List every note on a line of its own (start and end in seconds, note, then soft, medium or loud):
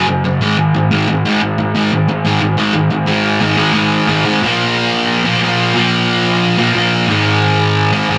0.08 0.22 F#2 medium
0.08 0.23 C#3 medium
0.24 0.39 F#2 medium
0.24 0.39 C#3 medium
0.41 0.56 G#2 medium
0.41 0.56 D#3 loud
0.41 0.57 G#3 medium
0.58 0.73 G#2 medium
0.58 0.73 D#3 medium
0.74 0.89 G#2 medium
0.74 0.89 D#3 medium
0.91 1.06 G#2 loud
0.91 1.07 D#3 loud
0.91 1.07 G#3 loud
1.08 1.23 G#2 medium
1.08 1.23 D#3 medium
1.25 1.40 G#2 medium
1.25 1.41 D#3 medium
1.25 1.41 G#3 medium
1.42 1.56 G#2 medium
1.42 1.56 D#3 medium
1.59 1.73 G#2 medium
1.59 1.73 D#3 medium
1.75 1.90 G#2 loud
1.75 1.91 D#3 loud
1.75 1.91 G#3 loud
1.92 2.07 G#2 medium
1.92 2.07 D#3 medium
2.08 2.23 G#2 medium
2.08 2.23 D#3 medium
2.25 2.40 G#2 medium
2.25 2.40 D#3 loud
2.25 2.41 G#3 loud
2.41 2.56 G#2 medium
2.41 2.56 D#3 loud
2.57 2.73 G#2 medium
2.57 2.74 D#3 loud
2.57 2.74 G#3 medium
2.74 2.89 G#2 medium
2.74 2.90 D#3 medium
2.91 3.05 G#2 medium
2.91 3.06 D#3 medium
3.06 3.39 G#2 loud
3.06 3.40 D#3 loud
3.06 3.41 G#3 loud
3.41 3.57 G#2 loud
3.41 3.57 D#3 loud
3.41 3.56 G#3 loud
3.57 3.72 G#2 medium
3.57 3.72 D#3 medium
3.57 3.73 G#3 loud
3.73 4.06 G#2 loud
3.73 4.07 D#3 loud
3.73 4.07 G#3 loud
4.07 4.25 G#2 medium
4.07 4.24 D#3 medium
4.07 4.24 G#3 medium
4.25 4.41 G#2 medium
4.25 4.41 D#3 medium
4.25 4.41 G#3 medium
4.41 5.24 A#2 medium
4.41 5.25 F3 medium
4.41 5.23 A#3 loud
5.24 5.40 A#2 medium
5.24 5.41 F3 medium
5.24 5.40 A#3 medium
5.41 5.73 A#2 medium
5.41 5.74 F3 medium
5.41 5.75 A#3 loud
5.74 6.57 A#2 medium
5.74 6.58 F3 loud
5.74 6.57 A#3 medium
6.58 6.73 A#2 medium
6.58 6.74 F3 medium
6.58 6.74 A#3 medium
6.74 7.07 A#2 medium
6.74 7.08 F3 medium
6.74 7.09 A#3 medium
7.08 7.91 G#2 loud
7.08 7.92 D#3 loud
7.08 7.91 G#3 loud
7.93 8.08 G#2 medium
7.93 8.09 D#3 medium
7.93 8.08 G#3 medium
8.09 8.18 G#2 medium
8.09 8.18 D#3 medium
8.09 8.18 G#3 medium